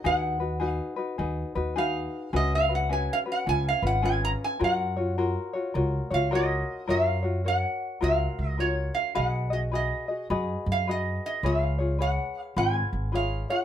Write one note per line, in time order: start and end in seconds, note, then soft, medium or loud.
0.04 0.79 D#2 medium
0.04 0.40 D#4 medium
0.04 0.40 F#4 medium
0.04 0.40 G#4 medium
0.04 0.39 B4 medium
0.04 0.66 F#5 medium
0.40 0.60 D#4 soft
0.40 0.60 F#4 soft
0.40 0.60 B4 medium
0.60 0.97 D#4 medium
0.60 0.96 F#4 medium
0.60 0.97 G#4 medium
0.60 0.95 B4 medium
0.66 0.94 F5 medium
0.96 1.18 D#4 soft
0.96 1.18 F#4 medium
0.96 1.18 B4 medium
1.18 1.42 D#2 medium
1.18 1.55 D#4 medium
1.18 1.55 F#4 medium
1.18 1.54 G#4 medium
1.18 1.54 B4 medium
1.55 2.06 D#2 medium
1.55 1.76 D#4 soft
1.55 1.76 F#4 soft
1.55 1.76 B4 medium
1.76 2.33 D#4 medium
1.76 2.33 F#4 medium
1.76 2.33 G#4 medium
1.76 2.33 B4 medium
1.76 2.36 F5 medium
2.33 3.07 C#2 medium
2.33 2.69 C#4 medium
2.33 2.69 F#4 medium
2.33 2.69 G#4 medium
2.33 2.68 B4 medium
2.33 2.52 D#5 medium
2.55 2.72 F5 medium
2.69 2.89 C#4 soft
2.69 2.89 F#4 medium
2.69 2.90 B4 medium
2.75 2.92 F#5 medium
2.89 3.26 C#4 medium
2.89 3.25 F#4 medium
2.89 3.25 G#4 medium
2.89 3.25 B4 medium
2.89 3.11 G#5 medium
3.13 3.18 F5 medium
3.26 3.46 C#4 soft
3.26 3.47 F#4 soft
3.26 3.47 B4 soft
3.32 3.49 F#5 medium
3.46 3.70 C#2 medium
3.46 3.83 C#4 medium
3.46 3.82 F4 medium
3.46 3.82 G#4 medium
3.46 3.81 B4 medium
3.46 3.67 G#5 loud
3.68 3.86 F5 medium
3.82 4.33 G#1 medium
3.82 4.02 C#4 soft
3.82 4.02 F4 soft
3.82 4.03 B4 medium
3.87 4.05 F#5 medium
4.02 4.60 C#4 medium
4.02 4.60 F4 medium
4.02 4.59 G#4 medium
4.02 4.61 B4 medium
4.02 4.24 G#5 medium
4.25 4.30 A#5 loud
4.44 4.62 G#5 medium
4.60 5.35 F#2 medium
4.60 4.96 F4 medium
4.60 4.96 F#4 medium
4.60 4.96 A#4 medium
4.60 4.95 C#5 medium
4.64 6.29 F#5 medium
4.96 5.17 F4 soft
4.96 5.17 F#4 soft
4.96 5.17 C#5 soft
5.18 5.54 F4 medium
5.18 5.54 F#4 medium
5.18 5.54 A#4 medium
5.18 5.52 C#5 medium
5.53 5.74 F4 soft
5.53 5.75 F#4 soft
5.53 5.74 C#5 medium
5.74 5.98 C#2 medium
5.74 6.11 F4 medium
5.74 6.10 F#4 medium
5.74 6.10 A#4 medium
5.74 6.09 C#5 medium
6.10 6.62 C#2 medium
6.10 6.30 F4 soft
6.10 6.31 F#4 soft
6.10 6.31 C#5 medium
6.10 6.34 F5 medium
6.31 6.88 F4 medium
6.31 6.88 F#4 medium
6.31 6.87 A#4 medium
6.31 6.88 C#5 medium
6.35 6.92 D#5 medium
6.88 7.63 F#2 medium
6.88 7.24 F4 medium
6.88 7.23 F#4 medium
6.88 7.24 A#4 medium
6.88 7.21 C#5 medium
6.88 7.47 F5 medium
7.23 7.45 F4 soft
7.23 7.44 F#4 soft
7.23 7.44 C#5 medium
7.44 8.01 F#4 medium
7.44 7.99 A#4 soft
7.44 8.00 C#5 medium
7.44 8.03 F#5 medium
8.01 8.26 C#2 medium
8.01 8.57 F4 medium
8.01 8.59 F#4 medium
8.01 8.56 A#4 medium
8.01 8.58 C#5 medium
8.01 8.49 F5 medium
8.39 8.89 C#2 medium
8.49 8.61 D#5 medium
8.58 9.15 F4 medium
8.58 9.15 F#4 medium
8.58 9.14 A#4 soft
8.58 9.15 C#5 medium
8.58 8.97 C#5 medium
8.95 9.15 F5 medium
9.15 9.90 B1 medium
9.15 9.51 F#4 medium
9.15 9.51 G#4 medium
9.15 9.51 B4 medium
9.15 9.49 D#5 medium
9.15 9.53 F#5 medium
9.50 9.72 F#4 soft
9.50 9.72 G#4 soft
9.50 9.72 D#5 medium
9.50 9.59 D#5 medium
9.72 10.09 F#4 soft
9.72 10.08 G#4 medium
9.72 10.08 B4 medium
9.72 10.07 D#5 medium
9.72 10.27 D#5 medium
10.08 10.29 F#4 soft
10.08 10.30 G#4 soft
10.08 10.29 D#5 soft
10.30 10.53 F#2 medium
10.30 10.87 F#4 medium
10.30 10.89 G#4 medium
10.30 10.87 B4 medium
10.30 10.87 D#5 medium
10.66 11.16 F#2 medium
10.72 10.90 F5 medium
10.87 11.44 F#4 medium
10.87 11.44 G#4 medium
10.87 11.43 B4 medium
10.87 11.44 D#5 medium
10.87 11.25 D#5 medium
11.26 11.45 D#5 medium
11.43 12.17 C#2 medium
11.43 11.79 F4 medium
11.43 11.78 G#4 medium
11.43 11.79 B4 medium
11.43 11.77 C#5 medium
11.43 12.01 F5 medium
11.78 12.00 F4 soft
11.78 11.99 G#4 soft
11.78 11.99 C#5 soft
11.99 12.56 G#4 medium
11.99 12.55 B4 medium
11.99 12.57 C#5 medium
11.99 12.40 F#5 medium
12.40 12.54 F5 medium
12.56 12.80 G#1 medium
12.56 13.12 F4 medium
12.56 13.13 G#4 medium
12.56 13.11 B4 medium
12.56 13.14 C#5 medium
12.56 13.15 G#5 loud
12.93 13.43 G#1 medium
13.12 13.49 F4 medium
13.12 13.49 G#4 medium
13.12 13.48 B4 medium
13.12 13.49 C#5 medium
13.12 13.48 F5 medium
13.50 13.64 F4 soft
13.50 13.64 G#4 soft
13.50 13.64 C#5 soft
13.50 13.64 F#5 medium